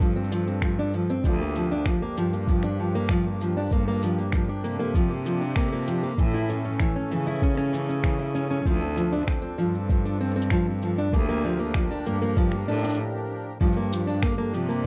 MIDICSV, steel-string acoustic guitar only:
0, 0, Header, 1, 2, 480
1, 0, Start_track
1, 0, Tempo, 618557
1, 958, Time_signature, 4, 2, 24, 8
1, 11534, End_track
2, 0, Start_track
2, 0, Title_t, "Steel-string acoustic guitar"
2, 0, Program_c, 0, 25
2, 2, Note_on_c, 0, 53, 79
2, 108, Note_off_c, 0, 53, 0
2, 124, Note_on_c, 0, 60, 90
2, 229, Note_off_c, 0, 60, 0
2, 246, Note_on_c, 0, 53, 88
2, 350, Note_off_c, 0, 53, 0
2, 368, Note_on_c, 0, 60, 70
2, 477, Note_off_c, 0, 60, 0
2, 490, Note_on_c, 0, 53, 75
2, 592, Note_off_c, 0, 53, 0
2, 611, Note_on_c, 0, 62, 91
2, 713, Note_off_c, 0, 62, 0
2, 732, Note_on_c, 0, 53, 71
2, 833, Note_off_c, 0, 53, 0
2, 854, Note_on_c, 0, 60, 97
2, 954, Note_off_c, 0, 60, 0
2, 969, Note_on_c, 0, 53, 86
2, 1072, Note_off_c, 0, 53, 0
2, 1093, Note_on_c, 0, 58, 73
2, 1200, Note_off_c, 0, 58, 0
2, 1214, Note_on_c, 0, 53, 72
2, 1315, Note_off_c, 0, 53, 0
2, 1331, Note_on_c, 0, 62, 96
2, 1433, Note_off_c, 0, 62, 0
2, 1449, Note_on_c, 0, 53, 72
2, 1552, Note_off_c, 0, 53, 0
2, 1568, Note_on_c, 0, 58, 94
2, 1672, Note_off_c, 0, 58, 0
2, 1689, Note_on_c, 0, 53, 91
2, 1792, Note_off_c, 0, 53, 0
2, 1808, Note_on_c, 0, 58, 72
2, 1917, Note_off_c, 0, 58, 0
2, 1933, Note_on_c, 0, 53, 73
2, 2034, Note_off_c, 0, 53, 0
2, 2045, Note_on_c, 0, 62, 98
2, 2150, Note_off_c, 0, 62, 0
2, 2169, Note_on_c, 0, 53, 70
2, 2272, Note_off_c, 0, 53, 0
2, 2290, Note_on_c, 0, 58, 97
2, 2392, Note_off_c, 0, 58, 0
2, 2410, Note_on_c, 0, 53, 97
2, 2513, Note_off_c, 0, 53, 0
2, 2531, Note_on_c, 0, 58, 67
2, 2639, Note_off_c, 0, 58, 0
2, 2650, Note_on_c, 0, 53, 73
2, 2752, Note_off_c, 0, 53, 0
2, 2769, Note_on_c, 0, 62, 91
2, 2872, Note_off_c, 0, 62, 0
2, 2890, Note_on_c, 0, 58, 85
2, 2992, Note_off_c, 0, 58, 0
2, 3007, Note_on_c, 0, 58, 94
2, 3111, Note_off_c, 0, 58, 0
2, 3128, Note_on_c, 0, 53, 87
2, 3231, Note_off_c, 0, 53, 0
2, 3245, Note_on_c, 0, 58, 68
2, 3356, Note_off_c, 0, 58, 0
2, 3365, Note_on_c, 0, 53, 78
2, 3470, Note_off_c, 0, 53, 0
2, 3484, Note_on_c, 0, 62, 92
2, 3589, Note_off_c, 0, 62, 0
2, 3600, Note_on_c, 0, 58, 93
2, 3707, Note_off_c, 0, 58, 0
2, 3720, Note_on_c, 0, 58, 95
2, 3827, Note_off_c, 0, 58, 0
2, 3841, Note_on_c, 0, 53, 92
2, 3948, Note_off_c, 0, 53, 0
2, 3955, Note_on_c, 0, 58, 68
2, 4071, Note_off_c, 0, 58, 0
2, 4077, Note_on_c, 0, 53, 67
2, 4186, Note_off_c, 0, 53, 0
2, 4198, Note_on_c, 0, 62, 98
2, 4306, Note_off_c, 0, 62, 0
2, 4319, Note_on_c, 0, 58, 90
2, 4427, Note_off_c, 0, 58, 0
2, 4440, Note_on_c, 0, 58, 92
2, 4547, Note_off_c, 0, 58, 0
2, 4560, Note_on_c, 0, 53, 89
2, 4667, Note_off_c, 0, 53, 0
2, 4679, Note_on_c, 0, 58, 74
2, 4793, Note_off_c, 0, 58, 0
2, 4800, Note_on_c, 0, 52, 73
2, 4907, Note_off_c, 0, 52, 0
2, 4920, Note_on_c, 0, 64, 97
2, 5027, Note_off_c, 0, 64, 0
2, 5040, Note_on_c, 0, 61, 94
2, 5147, Note_off_c, 0, 61, 0
2, 5158, Note_on_c, 0, 61, 89
2, 5266, Note_off_c, 0, 61, 0
2, 5281, Note_on_c, 0, 52, 87
2, 5388, Note_off_c, 0, 52, 0
2, 5400, Note_on_c, 0, 61, 75
2, 5513, Note_off_c, 0, 61, 0
2, 5521, Note_on_c, 0, 52, 75
2, 5628, Note_off_c, 0, 52, 0
2, 5640, Note_on_c, 0, 64, 100
2, 5747, Note_off_c, 0, 64, 0
2, 5760, Note_on_c, 0, 61, 94
2, 5867, Note_off_c, 0, 61, 0
2, 5876, Note_on_c, 0, 61, 95
2, 5986, Note_off_c, 0, 61, 0
2, 5996, Note_on_c, 0, 52, 91
2, 6105, Note_off_c, 0, 52, 0
2, 6119, Note_on_c, 0, 61, 75
2, 6233, Note_off_c, 0, 61, 0
2, 6238, Note_on_c, 0, 52, 78
2, 6346, Note_off_c, 0, 52, 0
2, 6355, Note_on_c, 0, 64, 91
2, 6465, Note_off_c, 0, 64, 0
2, 6476, Note_on_c, 0, 61, 97
2, 6585, Note_off_c, 0, 61, 0
2, 6599, Note_on_c, 0, 61, 99
2, 6707, Note_off_c, 0, 61, 0
2, 6716, Note_on_c, 0, 53, 92
2, 6825, Note_off_c, 0, 53, 0
2, 6835, Note_on_c, 0, 60, 76
2, 6951, Note_off_c, 0, 60, 0
2, 6958, Note_on_c, 0, 53, 70
2, 7066, Note_off_c, 0, 53, 0
2, 7079, Note_on_c, 0, 62, 100
2, 7187, Note_off_c, 0, 62, 0
2, 7194, Note_on_c, 0, 60, 91
2, 7300, Note_off_c, 0, 60, 0
2, 7309, Note_on_c, 0, 60, 93
2, 7422, Note_off_c, 0, 60, 0
2, 7435, Note_on_c, 0, 53, 98
2, 7545, Note_off_c, 0, 53, 0
2, 7560, Note_on_c, 0, 60, 71
2, 7673, Note_off_c, 0, 60, 0
2, 7680, Note_on_c, 0, 53, 81
2, 7787, Note_off_c, 0, 53, 0
2, 7801, Note_on_c, 0, 62, 89
2, 7908, Note_off_c, 0, 62, 0
2, 7920, Note_on_c, 0, 60, 93
2, 8027, Note_off_c, 0, 60, 0
2, 8039, Note_on_c, 0, 60, 100
2, 8147, Note_off_c, 0, 60, 0
2, 8159, Note_on_c, 0, 53, 103
2, 8267, Note_off_c, 0, 53, 0
2, 8281, Note_on_c, 0, 60, 72
2, 8394, Note_off_c, 0, 60, 0
2, 8401, Note_on_c, 0, 53, 75
2, 8508, Note_off_c, 0, 53, 0
2, 8520, Note_on_c, 0, 62, 96
2, 8627, Note_off_c, 0, 62, 0
2, 8638, Note_on_c, 0, 58, 98
2, 8746, Note_off_c, 0, 58, 0
2, 8759, Note_on_c, 0, 58, 109
2, 8867, Note_off_c, 0, 58, 0
2, 8879, Note_on_c, 0, 53, 103
2, 8987, Note_off_c, 0, 53, 0
2, 8997, Note_on_c, 0, 58, 72
2, 9112, Note_off_c, 0, 58, 0
2, 9117, Note_on_c, 0, 53, 76
2, 9226, Note_off_c, 0, 53, 0
2, 9240, Note_on_c, 0, 62, 97
2, 9347, Note_off_c, 0, 62, 0
2, 9362, Note_on_c, 0, 58, 95
2, 9468, Note_off_c, 0, 58, 0
2, 9480, Note_on_c, 0, 58, 95
2, 9587, Note_off_c, 0, 58, 0
2, 9597, Note_on_c, 0, 53, 99
2, 9706, Note_off_c, 0, 53, 0
2, 9718, Note_on_c, 0, 58, 76
2, 9832, Note_off_c, 0, 58, 0
2, 9839, Note_on_c, 0, 62, 98
2, 9953, Note_off_c, 0, 62, 0
2, 9963, Note_on_c, 0, 62, 104
2, 10069, Note_off_c, 0, 62, 0
2, 10559, Note_on_c, 0, 53, 93
2, 10667, Note_off_c, 0, 53, 0
2, 10681, Note_on_c, 0, 58, 78
2, 10794, Note_off_c, 0, 58, 0
2, 10802, Note_on_c, 0, 53, 68
2, 10908, Note_off_c, 0, 53, 0
2, 10919, Note_on_c, 0, 62, 93
2, 11027, Note_off_c, 0, 62, 0
2, 11040, Note_on_c, 0, 58, 93
2, 11147, Note_off_c, 0, 58, 0
2, 11158, Note_on_c, 0, 58, 98
2, 11266, Note_off_c, 0, 58, 0
2, 11276, Note_on_c, 0, 53, 95
2, 11385, Note_off_c, 0, 53, 0
2, 11396, Note_on_c, 0, 58, 74
2, 11511, Note_off_c, 0, 58, 0
2, 11534, End_track
0, 0, End_of_file